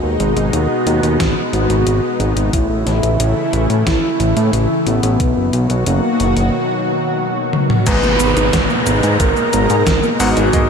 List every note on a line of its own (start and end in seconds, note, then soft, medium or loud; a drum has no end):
0.00 0.18 D#2 medium
0.00 2.50 B2 medium
0.00 2.50 G#3 medium
0.00 2.51 B3 medium
0.00 2.50 D#4 medium
0.00 0.40 F#4 loud
0.20 0.34 G#1 medium
0.20 closed hi-hat medium
0.37 0.51 G#1 medium
0.37 closed hi-hat medium
0.53 0.68 D#2 loud
0.53 1.40 F#4 loud
0.53 closed hi-hat medium
0.87 1.01 D#2 medium
0.87 closed hi-hat medium
1.03 1.18 D#2 medium
1.03 closed hi-hat medium
1.20 1.34 G#1 loud
1.20 kick loud
1.20 snare loud
1.20 closed hi-hat medium
1.53 1.68 G#1 loud
1.53 2.40 F#4 loud
1.53 closed hi-hat medium
1.70 1.84 G#1 medium
1.70 closed hi-hat medium
1.86 2.01 G#1 loud
1.86 closed hi-hat medium
2.20 2.34 G#1 medium
2.20 closed hi-hat medium
2.36 2.51 G#1 medium
2.36 closed hi-hat medium
2.53 2.68 A1 loud
2.53 5.17 C#3 medium
2.53 5.17 E3 medium
2.53 5.17 A3 medium
2.53 3.73 E4 loud
2.53 5.17 E4 medium
2.53 kick loud
2.53 closed hi-hat medium
2.70 2.84 A1 medium
2.86 3.01 A1 medium
2.86 snare soft
2.86 closed hi-hat medium
3.03 3.18 A1 medium
3.03 closed hi-hat medium
3.20 3.34 A1 loud
3.20 closed hi-hat medium
3.53 3.68 A1 medium
3.53 closed hi-hat medium
3.70 3.84 A2 medium
3.70 closed hi-hat medium
3.86 4.01 A1 loud
3.86 4.73 E4 loud
3.86 kick loud
3.86 snare loud
3.86 closed hi-hat medium
4.20 4.34 A1 loud
4.20 closed hi-hat medium
4.37 4.51 A2 medium
4.37 closed hi-hat medium
4.53 4.68 A1 loud
4.53 closed hi-hat medium
4.86 5.01 A1 medium
4.86 5.73 B3 loud
4.86 closed hi-hat medium
5.03 5.18 A1 medium
5.03 closed hi-hat medium
5.20 5.34 B1 loud
5.20 7.84 B2 medium
5.20 7.84 D#3 medium
5.20 7.84 F#3 medium
5.20 7.84 F#4 medium
5.20 kick loud
5.20 closed hi-hat medium
5.37 5.51 F#1 medium
5.53 5.68 B1 medium
5.53 closed hi-hat medium
5.70 5.84 B1 medium
5.70 closed hi-hat medium
5.86 6.01 F#1 loud
5.86 6.53 A#3 loud
5.86 closed hi-hat medium
6.20 6.34 F#1 medium
6.20 closed hi-hat medium
6.37 6.51 F#1 medium
6.37 closed hi-hat medium
7.53 high tom medium
7.70 mid tom medium
7.86 8.01 G#1 loud
7.86 10.16 G#2 medium
7.86 10.70 B2 medium
7.86 10.70 G#3 medium
7.86 8.00 G#3 medium
7.86 10.16 B3 medium
7.86 10.70 D#4 medium
7.86 10.16 D#4 medium
7.86 10.16 G#4 medium
7.86 9.07 B4 loud
7.86 10.16 D#5 medium
7.86 10.70 A#5 medium
7.86 10.16 A#5 medium
7.86 kick loud
7.86 closed hi-hat loud
7.86 crash loud
7.86 downlifter medium
7.86 shaker soft
8.03 8.18 G#1 medium
8.03 8.16 A#3 medium
8.03 shaker soft
8.20 8.34 G#1 medium
8.20 8.33 B3 loud
8.20 closed hi-hat medium
8.20 shaker medium
8.37 8.51 G#1 medium
8.37 8.44 D#4 medium
8.37 closed hi-hat medium
8.37 shaker soft
8.53 8.68 G#1 loud
8.53 8.61 G#3 medium
8.53 kick loud
8.53 snare loud
8.53 closed hi-hat loud
8.53 shaker soft
8.70 8.83 A#3 loud
8.70 shaker soft
8.87 9.01 G#1 medium
8.87 8.94 B3 loud
8.87 closed hi-hat medium
8.87 shaker medium
9.03 9.18 G#2 medium
9.03 9.16 D#4 loud
9.03 closed hi-hat medium
9.03 shaker soft
9.20 9.34 G#1 loud
9.20 9.33 G#3 medium
9.20 10.07 A#4 loud
9.20 kick loud
9.20 closed hi-hat loud
9.20 shaker soft
9.37 9.49 A#3 medium
9.37 shaker soft
9.53 9.68 G#1 medium
9.53 9.66 B3 medium
9.53 closed hi-hat medium
9.53 shaker medium
9.70 9.84 G#2 medium
9.70 9.78 D#4 medium
9.70 closed hi-hat medium
9.70 shaker soft
9.86 10.01 G#1 loud
9.86 9.94 G#3 medium
9.86 kick loud
9.86 snare loud
9.86 closed hi-hat medium
9.86 shaker soft
10.03 10.16 A#3 loud
10.03 shaker soft
10.20 10.34 G#1 medium
10.20 10.49 G#2 loud
10.20 10.28 B3 loud
10.20 10.49 B3 medium
10.20 10.49 D#4 medium
10.20 10.70 F#4 loud
10.20 10.49 G#4 medium
10.20 10.49 A#4 medium
10.20 10.49 F#5 loud
10.20 open hi-hat medium
10.20 shaker medium
10.36 10.51 G#1 medium
10.36 10.49 D#4 loud
10.36 closed hi-hat medium
10.36 shaker soft
10.53 10.68 G#1 loud
10.53 10.70 G#2 medium
10.53 10.66 G#3 medium
10.53 10.70 B3 medium
10.53 10.70 D#4 medium
10.53 10.70 G#4 medium
10.53 10.70 A#4 medium
10.53 10.70 D#5 medium
10.53 kick loud
10.53 closed hi-hat loud
10.53 shaker soft